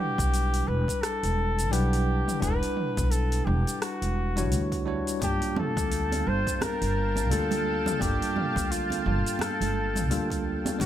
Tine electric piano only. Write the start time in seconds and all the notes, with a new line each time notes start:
Already playing: G3 D4 E4 B4 F#5
1.71 G3 D4 E4 B4 F#5
2.40 G3 D4 E4 F#5
2.44 B4
4.36 G3 D4 E4 F#4 C#5
4.85 G3 D4 E4 F#4 C#5
5.19 G3 A#3 D4 F4
5.24 A5
7.30 G3 A#3 D4 F4 A4
7.99 G3 A#3 D4 F4
8.03 A4
10.10 G3 A#3 D4 F4 A4
10.79 G3 D4 E4 F#5